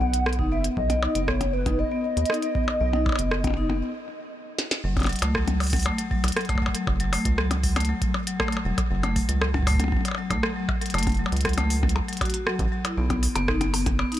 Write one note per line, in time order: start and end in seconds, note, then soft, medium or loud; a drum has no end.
0.01 0.40 B1 medium
0.01 0.11 B3 medium
0.01 0.48 F#5 loud
0.14 closed hi-hat medium
0.26 0.37 B3 medium
0.26 cross-stick loud
0.33 closed hi-hat soft
0.39 0.69 F#1 medium
0.39 0.45 D#4 loud
0.39 kick medium
0.52 0.58 B3 medium
0.52 0.63 E5 loud
0.64 0.75 B3 medium
0.64 closed hi-hat medium
0.77 1.07 B1 loud
0.77 1.30 D#5 loud
0.77 kick loud
0.90 1.00 B3 medium
0.90 closed hi-hat medium
0.90 percussion blips medium
1.03 1.09 D#4 medium
1.03 percussion blips medium
1.15 1.84 F#1 medium
1.15 1.22 B3 medium
1.15 closed hi-hat medium
1.28 1.39 B3 medium
1.28 1.53 C#5 medium
1.28 kick loud
1.28 cross-stick loud
1.41 closed hi-hat soft
1.41 percussion blips medium
1.53 1.64 B3 medium
1.53 1.80 B4 medium
1.66 1.73 D#4 medium
1.66 kick loud
1.66 closed hi-hat medium
1.66 percussion blips medium
1.79 1.85 B3 medium
1.79 4.33 D#5 loud
1.92 2.02 B3 medium
2.17 2.25 D#2 medium
2.17 2.28 B3 medium
2.17 closed hi-hat soft
2.26 closed hi-hat soft
2.30 2.36 D#4 medium
2.30 cross-stick loud
2.34 closed hi-hat soft
2.42 2.49 B3 medium
2.42 closed hi-hat soft
2.55 2.66 B3 medium
2.55 kick loud
2.68 percussion blips medium
2.81 3.11 B1 loud
2.81 2.91 B3 medium
2.93 3.00 D#4 loud
2.93 percussion blips medium
3.06 3.12 B3 medium
3.06 kick loud
3.06 percussion blips soft
3.09 percussion blips soft
3.12 percussion blips medium
3.16 3.82 F#1 medium
3.16 3.29 B3 medium
3.16 closed hi-hat medium
3.16 percussion blips medium
3.31 cross-stick loud
3.44 3.55 B3 medium
3.44 kick loud
3.44 closed hi-hat soft
3.44 percussion blips medium
3.47 percussion blips medium
3.50 percussion blips medium
3.54 3.63 D#4 loud
3.54 percussion blips soft
3.69 3.76 B3 medium
3.69 percussion blips medium
4.59 snare medium
4.71 snare medium
4.84 5.14 F#1 loud
4.84 4.95 F#3 medium
4.97 kick loud
4.97 closed hi-hat soft
4.97 percussion blips soft
4.99 closed hi-hat soft
4.99 percussion blips soft
5.01 closed hi-hat soft
5.01 percussion blips medium
5.01 percussion blips soft
5.04 closed hi-hat soft
5.04 percussion blips medium
5.04 percussion blips soft
5.07 5.20 F#3 medium
5.07 closed hi-hat soft
5.07 percussion blips soft
5.13 closed hi-hat soft
5.16 closed hi-hat soft
5.19 5.90 C#2 medium
5.19 5.28 A3 loud
5.19 closed hi-hat soft
5.22 closed hi-hat medium
5.22 percussion blips medium
5.35 5.41 F#3 medium
5.35 kick loud
5.35 cross-stick loud
5.48 5.58 F#3 medium
5.48 closed hi-hat medium
5.48 percussion blips medium
5.60 open hi-hat soft
5.60 percussion blips medium
5.63 open hi-hat soft
5.67 open hi-hat soft
5.70 5.83 F#3 medium
5.70 kick loud
5.70 closed hi-hat medium
5.70 open hi-hat soft
5.73 open hi-hat medium
5.73 percussion blips medium
5.76 open hi-hat medium
5.79 open hi-hat medium
5.83 5.92 A3 loud
5.83 open hi-hat medium
5.83 percussion blips medium
5.98 6.05 F#3 medium
5.98 closed hi-hat medium
6.11 6.22 F#3 medium
6.11 kick loud
6.24 6.32 B1 medium
6.24 closed hi-hat medium
6.24 percussion blips medium
6.28 closed hi-hat medium
6.32 closed hi-hat soft
6.36 6.47 F#3 medium
6.36 cross-stick loud
6.36 closed hi-hat soft
6.41 closed hi-hat soft
6.45 closed hi-hat soft
6.49 6.56 A3 loud
6.49 kick loud
6.49 closed hi-hat soft
6.49 percussion blips soft
6.55 kick medium
6.55 percussion blips soft
6.62 6.68 F#3 medium
6.62 kick medium
6.66 kick medium
6.66 percussion blips medium
6.75 6.85 F#3 medium
6.75 closed hi-hat medium
6.87 7.18 F#1 loud
6.87 kick loud
6.87 percussion blips medium
7.00 7.11 F#3 medium
7.00 closed hi-hat soft
7.13 7.19 A3 medium
7.13 open hi-hat medium
7.13 percussion blips medium
7.25 7.94 C#2 medium
7.25 7.32 F#3 medium
7.25 kick loud
7.25 closed hi-hat medium
7.38 7.49 F#3 medium
7.38 cross-stick loud
7.51 closed hi-hat medium
7.51 percussion blips medium
7.63 7.74 F#3 medium
7.63 kick loud
7.63 open hi-hat medium
7.76 7.83 A3 medium
7.76 closed hi-hat medium
7.76 percussion blips medium
7.80 closed hi-hat medium
7.85 closed hi-hat soft
7.89 7.95 F#3 medium
8.02 8.12 F#3 medium
8.02 kick loud
8.02 closed hi-hat medium
8.14 percussion blips medium
8.27 8.38 F#3 medium
8.27 closed hi-hat medium
8.40 8.46 A3 medium
8.40 kick loud
8.40 cross-stick loud
8.40 percussion blips medium
8.48 percussion blips medium
8.52 8.59 F#3 medium
8.52 closed hi-hat soft
8.57 percussion blips soft
8.65 8.73 E1 loud
8.65 8.76 F#3 medium
8.78 kick loud
8.78 closed hi-hat medium
8.78 percussion blips medium
8.91 9.21 F#1 loud
8.91 9.01 F#3 medium
9.03 9.10 A3 loud
9.03 closed hi-hat soft
9.03 percussion blips medium
9.16 9.22 F#3 medium
9.16 kick loud
9.16 open hi-hat medium
9.29 9.97 C#2 medium
9.29 9.39 F#3 medium
9.29 closed hi-hat medium
9.41 cross-stick loud
9.41 percussion blips soft
9.54 9.65 F#3 medium
9.54 kick medium
9.54 percussion blips medium
9.58 kick medium
9.63 kick medium
9.67 9.73 A3 loud
9.67 kick medium
9.67 open hi-hat medium
9.67 percussion blips medium
9.71 kick medium
9.75 kick loud
9.80 9.86 F#3 medium
9.80 closed hi-hat medium
9.80 percussion blips medium
9.84 percussion blips medium
9.88 percussion blips soft
9.92 10.03 F#3 medium
9.92 kick loud
9.92 percussion blips soft
9.97 percussion blips soft
10.01 percussion blips soft
10.05 closed hi-hat medium
10.05 percussion blips soft
10.08 percussion blips soft
10.11 percussion blips soft
10.15 10.28 F#3 medium
10.15 percussion blips soft
10.30 10.38 B1 medium
10.30 10.37 A3 loud
10.30 kick loud
10.30 closed hi-hat medium
10.30 percussion blips medium
10.43 10.50 F#3 medium
10.43 cross-stick loud
10.56 10.66 F#3 medium
10.69 kick loud
10.69 percussion blips medium
10.81 10.92 F#3 medium
10.81 closed hi-hat soft
10.86 closed hi-hat soft
10.90 closed hi-hat soft
10.94 11.24 F#1 loud
10.94 11.00 A3 loud
10.94 closed hi-hat soft
10.94 percussion blips medium
10.98 closed hi-hat medium
11.03 closed hi-hat medium
11.07 11.13 F#3 medium
11.07 kick loud
11.07 closed hi-hat soft
11.07 percussion blips medium
11.09 closed hi-hat soft
11.12 closed hi-hat soft
11.14 closed hi-hat soft
11.17 11.30 F#3 medium
11.17 closed hi-hat soft
11.26 percussion blips soft
11.32 12.01 C#2 medium
11.32 closed hi-hat soft
11.37 closed hi-hat soft
11.41 closed hi-hat soft
11.45 11.55 F#3 medium
11.45 kick loud
11.45 cross-stick loud
11.45 closed hi-hat soft
11.49 closed hi-hat soft
11.53 closed hi-hat medium
11.58 11.64 A3 loud
11.58 closed hi-hat soft
11.58 percussion blips medium
11.70 11.77 F#3 medium
11.70 open hi-hat medium
11.83 11.94 F#3 medium
11.83 kick loud
11.83 percussion blips medium
11.89 closed hi-hat medium
11.96 percussion blips soft
12.08 12.19 F#3 medium
12.08 closed hi-hat soft
12.13 closed hi-hat soft
12.17 closed hi-hat soft
12.21 12.28 F#4 loud
12.21 kick loud
12.21 closed hi-hat soft
12.21 percussion blips medium
12.25 closed hi-hat soft
12.30 closed hi-hat soft
12.34 12.44 F#4 medium
12.34 closed hi-hat medium
12.47 12.57 F#3 medium
12.47 cross-stick loud
12.59 12.67 A1 loud
12.59 kick loud
12.59 closed hi-hat soft
12.72 12.78 F#3 medium
12.85 12.95 E4 medium
12.85 closed hi-hat medium
12.85 percussion blips medium
12.97 13.28 B1 loud
12.97 13.04 B3 medium
13.10 13.21 B3 medium
13.10 kick loud
13.10 closed hi-hat soft
13.10 percussion blips medium
13.10 percussion blips soft
13.23 open hi-hat medium
13.36 14.04 F#1 medium
13.36 13.46 B3 loud
13.36 closed hi-hat medium
13.36 percussion blips medium
13.48 13.55 D#4 loud
13.48 kick loud
13.48 cross-stick loud
13.61 13.67 B3 medium
13.61 closed hi-hat soft
13.61 percussion blips medium
13.74 13.84 B3 medium
13.74 open hi-hat medium
13.74 percussion blips medium
13.86 kick loud
13.86 closed hi-hat medium
13.86 percussion blips medium
13.99 14.10 B3 loud
13.99 percussion blips medium
14.12 14.18 D#4 loud
14.12 closed hi-hat soft
14.14 closed hi-hat soft